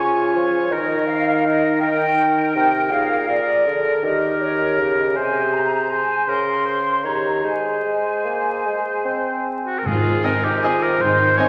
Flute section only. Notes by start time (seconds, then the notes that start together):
Already playing: G#5
0.55 C#5
0.71 D#5
1.08 F5
1.45 D#5
1.81 G5
2.56 G5
2.91 F5
3.28 D5
4.04 D#5
4.41 C#5
4.98 D#5
5.15 G#5
5.53 A#5
5.91 G#5
6.26 C6
7.05 A#5
7.44 G#5